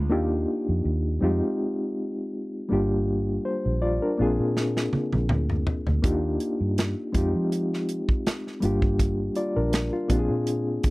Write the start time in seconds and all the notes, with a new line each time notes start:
Already playing: D2 A#3 C4 D4 F4 G#4
0.09 D#2 A#3 D4 D#4 F4 G4
0.69 F2
0.85 D#2
1.20 F2 G3 C4 D#4 F4
1.25 G#3 G4
2.68 G1 G3 A#3 D4 F4
2.73 G4
3.45 C5
3.66 A#1
3.82 F4 D5
4.02 D4 A#4
4.17 A#1 A#3 C4 D4 F4
4.22 G#4
4.39 A#2
4.57 snare
4.77 snare
4.93 muted fingered electric bass stroke, high tom
5.12 A#1, high tom
5.29 D2, mid tom
5.50 mid tom
5.67 floor tom
5.87 D2, floor tom
6.02 D#2 A#3 D4 D#4 F4 G4, kick, closed hi-hat
6.40 closed hi-hat
6.61 G2
6.78 snare, closed hi-hat
7.13 F2 G#3 C4 D#4 F4, kick, closed hi-hat
7.17 G4
7.35 F3
7.52 closed hi-hat
7.74 snare
7.89 closed hi-hat
8.09 kick
8.27 snare, closed hi-hat
8.47 snare
8.60 G1 G3 A#3 D4 F4, closed hi-hat
8.65 G4
8.82 kick
8.99 kick, closed hi-hat
9.35 F4 D5, closed hi-hat
9.56 A#1 D4 A#4
9.73 snare, closed hi-hat
9.93 F4
10.08 A#1 A#3 C4 D4 F4, kick, closed hi-hat
10.12 G4
10.19 G#4
10.30 A#2
10.47 closed hi-hat
10.83 muted fingered electric bass stroke, kick, closed hi-hat